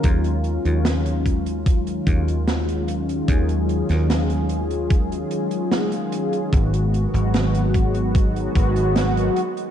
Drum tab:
HH |xxxxxxxxxxxxxxxx|xxxxxxxxxxxxxxxx|xxxxxxxxxxxxxxxx|
SD |----o-------o---|---oo-------o---|----o-------o---|
BD |o-----o-o-o-----|o-------o-------|o-----o-o-o-----|